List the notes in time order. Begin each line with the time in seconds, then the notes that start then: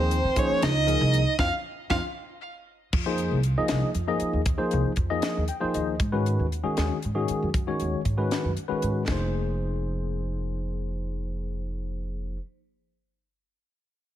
Already playing: D#2 F3 A#3 C4 D#4 G#4 C5
0.11 closed hi-hat
0.24 D#3
0.36 F3 A#3 C#4 D#4 G#4 C5 C#5, kick, closed hi-hat
0.51 muted upright bass stroke
0.62 C#2 D#4 D#5, snare, closed hi-hat
0.87 F3 A#3 D#4 G#4 A#4, closed hi-hat
1.01 C2
1.14 closed hi-hat
1.39 F2 C4 D#4 F4 F5, kick, snare
1.90 F2 C4 D#4 F4 F5, kick, snare
2.93 F2, kick, crash
3.06 F3 A#3 D#4 G#4 C5
3.18 closed hi-hat
3.31 C2
3.43 closed hi-hat
3.58 F3 A#3 D#4 G#4 D#5, muted upright bass stroke
3.68 C2, snare, closed hi-hat
3.95 F2, closed hi-hat
4.07 F3 A#3 D#4 G#4 D#5
4.20 muted upright bass stroke, closed hi-hat
4.33 D#2
4.46 kick, closed hi-hat
4.58 F3 A#3 D#4 G#4 C5
4.71 C2, closed hi-hat
4.85 muted upright bass stroke
4.96 F2, kick, closed hi-hat
5.10 F3 A#3 D#4 G#4 D#5
5.22 snare, closed hi-hat
5.37 D#2
5.48 G5, closed hi-hat
5.60 F3 A#3 D#4 G#4 C5, muted upright bass stroke
5.74 D#2 D#5, closed hi-hat
6.00 G#2, kick, closed hi-hat
6.12 D#3 G#3 C#4 F#4 B4
6.26 closed hi-hat
6.39 D#2
6.52 closed hi-hat
6.63 D#3 G#3 C#4 F#4 G#4, muted upright bass stroke
6.77 D#2, snare, closed hi-hat
7.02 G#2, closed hi-hat
7.15 D#3 G#3 C#4 F#4 G#4
7.28 muted upright bass stroke, closed hi-hat
7.42 F#2
7.54 kick, closed hi-hat
7.67 D#3 G#3 C#4 F#4 C#5
7.80 D#2, closed hi-hat
7.94 muted upright bass stroke
8.05 G#2, kick, closed hi-hat
8.17 D#3 G#3 C#4 F#4 B4
8.31 snare, closed hi-hat
8.44 F#2
8.57 closed hi-hat
8.68 D#3 G#3 C#4 F#4 B4, muted upright bass stroke
8.82 G#2, closed hi-hat
9.07 F1 F3 A#3 D#4 G#4, kick, snare, splash
9.12 C5